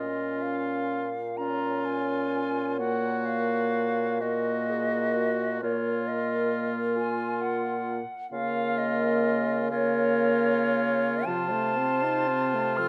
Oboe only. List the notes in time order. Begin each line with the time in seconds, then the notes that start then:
Already playing: F4
1.37 F4
2.79 F#4
4.21 F#4
5.63 F4
8.32 F4
9.71 F4
11.26 F4